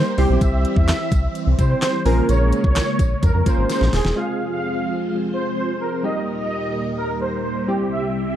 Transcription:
0.00 0.16 D#3 medium
0.00 2.02 G3 medium
0.00 0.16 A#3 medium
0.18 0.26 C2 loud
0.18 2.04 E3 medium
0.18 0.93 G3 medium
0.18 2.04 C4 medium
0.18 0.93 C4 medium
0.18 0.93 E4 medium
0.18 0.93 G4 medium
0.18 0.27 G4 medium
0.18 0.93 C5 medium
0.18 open hi-hat medium
0.18 tambourine soft
0.30 0.38 B1 loud
0.41 0.65 C2 loud
0.41 0.50 E5 loud
0.41 kick loud
0.41 closed hi-hat medium
0.41 tambourine medium
0.65 closed hi-hat medium
0.76 0.92 E2 loud
0.76 1.10 E5 medium
0.76 kick loud
0.88 snare medium
0.88 clap loud
0.88 closed hi-hat medium
0.88 tambourine medium
1.12 1.28 C2 medium
1.12 kick loud
1.12 closed hi-hat medium
1.12 tambourine medium
1.35 closed hi-hat medium
1.35 tambourine soft
1.47 1.55 C2 loud
1.59 1.75 C3 loud
1.59 1.93 G3 medium
1.59 1.93 C4 medium
1.59 1.93 E4 medium
1.59 1.93 G4 medium
1.59 1.76 C5 medium
1.59 1.93 C5 medium
1.59 kick loud
1.59 closed hi-hat medium
1.59 tambourine medium
1.82 1.91 C5 medium
1.82 snare loud
1.82 clap loud
1.82 closed hi-hat medium
1.82 tambourine medium
2.05 2.21 A#1 loud
2.05 4.14 C#3 medium
2.05 4.14 G#3 medium
2.05 4.14 A#3 medium
2.05 2.80 A#3 medium
2.05 2.80 C#4 medium
2.05 2.81 F4 medium
2.05 2.81 G#4 medium
2.05 2.14 A#4 medium
2.05 2.81 A#4 medium
2.05 open hi-hat medium
2.05 tambourine soft
2.29 2.53 A#1 loud
2.29 2.38 C#5 loud
2.29 closed hi-hat medium
2.29 tambourine medium
2.52 closed hi-hat medium
2.52 tambourine soft
2.64 2.80 C2 loud
2.64 2.97 C#5 medium
2.64 kick loud
2.76 snare loud
2.76 clap loud
2.76 closed hi-hat loud
2.76 tambourine medium
2.99 3.15 A#1 loud
2.99 kick loud
2.99 closed hi-hat medium
2.99 tambourine medium
3.23 3.31 F2 loud
3.23 3.40 A#4 medium
3.23 kick medium
3.23 closed hi-hat medium
3.23 tambourine soft
3.34 3.42 F2 medium
3.46 3.80 A#3 medium
3.46 3.80 C#4 medium
3.46 3.80 F4 medium
3.46 3.81 G#4 medium
3.46 3.81 A#4 medium
3.46 3.55 C5 medium
3.46 kick loud
3.46 closed hi-hat medium
3.46 tambourine medium
3.58 3.66 G#1 medium
3.69 3.78 C5 medium
3.69 snare medium
3.69 closed hi-hat medium
3.69 tambourine medium
3.81 3.89 A#1 medium
3.81 snare medium
3.93 4.01 D#1 loud
3.93 4.02 G#4 medium
3.93 snare loud
3.93 open hi-hat medium
3.93 tambourine soft
4.05 4.13 E1 medium
4.05 snare loud
4.16 6.02 F2 medium
4.16 6.02 C3 medium
4.16 6.00 G#3 medium
4.16 6.02 G#3 medium
4.16 6.00 C4 medium
4.16 6.00 F4 medium
4.16 6.02 F4 medium
4.16 6.00 G#4 medium
4.16 6.02 C5 medium
4.16 4.25 F5 medium
4.52 4.85 F5 medium
5.34 5.51 C5 medium
5.57 5.66 C5 medium
5.80 5.89 A#4 medium
6.03 7.66 D#2 medium
6.03 7.66 A#2 medium
6.03 7.64 G3 medium
6.03 8.36 G3 medium
6.03 7.64 A#3 medium
6.03 7.66 D#4 medium
6.03 7.65 D#4 medium
6.03 7.65 G4 medium
6.03 7.66 A#4 medium
6.03 6.13 D#5 loud
6.39 6.72 D#5 medium
6.98 7.15 A#4 medium
7.21 7.29 C5 medium
7.44 7.53 C5 medium
7.67 8.36 C2 medium
7.67 8.36 C3 medium
7.67 8.36 G3 medium
7.67 8.36 C4 medium
7.67 8.36 E4 medium
7.67 7.76 G4 medium
7.67 8.36 G4 medium
7.92 8.00 E5 medium
8.26 8.36 E5 medium

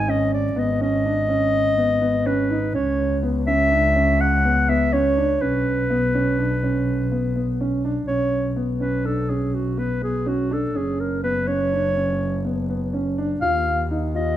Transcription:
0.00 2.76 G#1 medium
0.00 0.11 G#5 loud
0.08 0.48 C#4 medium
0.08 0.33 D#5 medium
0.34 0.60 D5 medium
0.56 0.76 B3 medium
0.56 0.82 D#5 medium
0.81 1.01 C#4 medium
0.81 2.28 D#5 loud
1.05 1.25 D4 medium
1.29 1.69 C#4 medium
1.78 1.98 B3 medium
2.01 2.22 B3 medium
2.26 2.46 C#4 medium
2.26 2.74 B4 medium
2.50 2.70 D#4 medium
2.74 5.43 C#2 medium
2.74 3.15 C#4 medium
2.74 3.20 C#5 medium
3.23 3.43 B3 medium
3.47 3.68 C#4 medium
3.47 4.22 E5 loud
3.71 3.92 D4 medium
3.95 4.36 C#4 medium
4.21 4.70 F#5 medium
4.44 4.65 B3 medium
4.69 4.89 B3 medium
4.69 4.94 E5 medium
4.93 5.13 C#4 medium
4.93 5.43 C#5 medium
5.17 5.37 D4 medium
5.41 8.04 B1 medium
5.41 5.82 C#4 medium
5.41 7.60 B4 medium
5.90 6.10 B3 medium
6.15 6.35 C#4 medium
6.39 6.59 D4 medium
6.63 7.03 C#4 medium
7.12 7.32 B3 medium
7.36 7.56 B3 medium
7.61 7.80 C#4 medium
7.85 8.04 D4 medium
8.08 10.76 B1 medium
8.08 8.48 C#4 medium
8.08 8.53 C#5 medium
8.56 8.77 B3 medium
8.80 9.01 C#4 medium
8.80 9.07 B4 medium
9.05 9.25 D4 medium
9.05 9.31 A4 medium
9.29 9.70 C#4 medium
9.29 9.56 G#4 medium
9.54 9.80 F#4 medium
9.77 9.98 B3 medium
9.77 10.03 B4 medium
10.01 10.22 B3 medium
10.01 10.29 G#4 medium
10.26 10.46 C#4 medium
10.26 10.55 F#4 medium
10.51 10.71 D4 medium
10.51 10.78 A4 medium
10.74 13.43 F#1 medium
10.74 11.15 C#4 medium
10.74 11.02 G#4 medium
11.00 11.23 A#4 medium
11.23 11.44 B3 medium
11.23 11.49 B4 medium
11.47 11.68 C#4 medium
11.47 12.45 C#5 loud
11.72 11.92 D4 medium
11.96 12.36 C#4 medium
12.45 12.65 B3 medium
12.70 12.90 B3 medium
12.93 13.14 C#4 medium
13.18 13.38 D4 medium
13.41 14.37 D#2 medium
13.41 13.82 F4 medium
13.41 13.87 F5 loud
13.91 14.11 D#4 medium
14.15 14.35 F4 medium
14.15 14.37 D#5 medium

